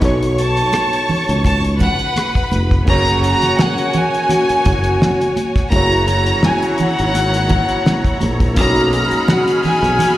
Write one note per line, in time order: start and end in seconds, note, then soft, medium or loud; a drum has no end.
0.00 0.61 B1 loud
0.00 2.82 B3 medium
0.00 2.83 D#4 medium
0.00 2.83 F#4 medium
0.00 2.84 A4 medium
0.00 1.76 C#5 medium
0.00 1.76 C#6 medium
0.00 kick medium
0.00 closed hi-hat medium
0.00 muted conga medium
0.05 2.85 C#5 medium
0.23 closed hi-hat soft
0.38 1.42 A5 loud
0.38 closed hi-hat medium
0.57 closed hi-hat medium
0.72 cross-stick loud
0.72 closed hi-hat medium
0.72 high conga medium
0.93 closed hi-hat soft
1.08 muted fingered electric bass stroke soft
1.08 open hi-hat soft
1.08 low conga medium
1.29 1.88 C#2 medium
1.29 closed hi-hat soft
1.44 1.61 A5 loud
1.44 kick medium
1.44 closed hi-hat loud
1.44 muted conga medium
1.64 closed hi-hat medium
1.79 2.85 B4 medium
1.79 2.48 F#5 medium
1.79 2.85 B5 medium
1.79 kick medium
1.79 closed hi-hat medium
1.79 muted conga soft
1.79 low conga medium
1.99 closed hi-hat soft
2.16 cross-stick loud
2.16 closed hi-hat medium
2.16 high conga medium
2.35 kick medium
2.35 closed hi-hat soft
2.52 2.81 F1 medium
2.52 closed hi-hat medium
2.52 high conga medium
2.71 kick medium
2.71 cross-stick soft
2.71 closed hi-hat soft
2.85 3.33 F#1 loud
2.85 5.33 F#3 medium
2.85 5.67 A#3 medium
2.85 5.33 A#3 medium
2.85 5.68 C#4 medium
2.85 5.33 C#4 medium
2.85 5.68 F#4 medium
2.85 5.33 F#4 medium
2.85 5.69 G#4 medium
2.85 5.68 C#5 medium
2.85 5.68 G#5 medium
2.85 kick loud
2.85 crash medium
2.85 muted conga medium
2.89 5.70 C#5 medium
2.89 3.21 A#5 loud
3.08 closed hi-hat soft
3.24 3.56 A#5 loud
3.24 closed hi-hat medium
3.42 muted fingered electric bass stroke medium
3.42 snare soft
3.42 closed hi-hat soft
3.59 3.95 F#5 medium
3.59 snare loud
3.59 high conga medium
3.78 closed hi-hat soft
3.93 5.38 G#5 medium
3.93 closed hi-hat medium
3.93 low conga medium
4.14 closed hi-hat medium
4.29 closed hi-hat loud
4.29 muted conga medium
4.29 low conga medium
4.49 muted fingered electric bass stroke soft
4.49 closed hi-hat medium
4.65 4.95 F#1 loud
4.65 kick medium
4.65 closed hi-hat medium
4.65 muted conga soft
4.84 closed hi-hat medium
5.01 snare loud
5.01 high conga medium
5.21 closed hi-hat soft
5.36 closed hi-hat medium
5.36 high conga medium
5.56 kick medium
5.56 snare soft
5.56 closed hi-hat soft
5.70 6.31 F#1 loud
5.70 8.18 F#3 medium
5.70 8.52 A#3 medium
5.70 8.18 A#3 medium
5.70 8.18 C#4 medium
5.70 8.53 E4 medium
5.70 8.54 E4 medium
5.70 8.18 F#4 medium
5.70 8.54 F#4 medium
5.70 8.54 C#5 medium
5.70 8.54 A#5 loud
5.70 6.06 A#5 loud
5.70 kick loud
5.70 closed hi-hat medium
5.70 muted conga medium
5.75 8.54 G#4 medium
5.75 8.55 C#5 medium
5.92 closed hi-hat soft
6.08 6.42 A#5 medium
6.08 closed hi-hat medium
6.08 muted conga soft
6.26 closed hi-hat medium
6.43 6.61 G#5 medium
6.43 snare loud
6.43 high conga medium
6.62 closed hi-hat medium
6.78 muted fingered electric bass stroke soft
6.78 closed hi-hat medium
6.78 low conga medium
6.82 8.19 F#5 medium
6.99 7.58 G#1 medium
6.99 closed hi-hat medium
7.14 closed hi-hat loud
7.14 muted conga medium
7.34 closed hi-hat medium
7.49 kick medium
7.49 closed hi-hat medium
7.49 muted conga soft
7.49 low conga medium
7.69 closed hi-hat soft
7.86 snare loud
7.86 high conga medium
8.05 kick medium
8.05 closed hi-hat soft
8.21 8.57 A#1 medium
8.21 closed hi-hat medium
8.21 high conga medium
8.40 kick medium
8.40 closed hi-hat soft
8.55 9.02 B1 loud
8.55 10.18 G#3 medium
8.55 10.18 A#3 medium
8.55 10.18 C#4 medium
8.55 10.18 D#4 medium
8.55 10.18 F#4 medium
8.55 10.18 G#4 medium
8.55 10.18 B5 loud
8.55 10.18 F6 medium
8.55 kick medium
8.55 closed hi-hat medium
8.55 muted conga medium
8.59 10.18 D#4 medium
8.59 10.18 F#4 medium
8.59 10.18 C#5 medium
8.59 8.92 A#5 loud
8.77 closed hi-hat medium
8.93 9.27 A#5 loud
8.93 closed hi-hat medium
8.93 muted conga soft
9.11 muted fingered electric bass stroke medium
9.11 closed hi-hat medium
9.28 9.44 F#5 medium
9.28 snare loud
9.28 high conga medium
9.47 closed hi-hat medium
9.63 10.18 G#5 medium
9.63 muted fingered electric bass stroke soft
9.63 open hi-hat soft
9.63 low conga medium
9.83 9.96 B1 medium
9.83 closed hi-hat soft
9.99 closed hi-hat loud
9.99 muted conga soft
9.99 low conga medium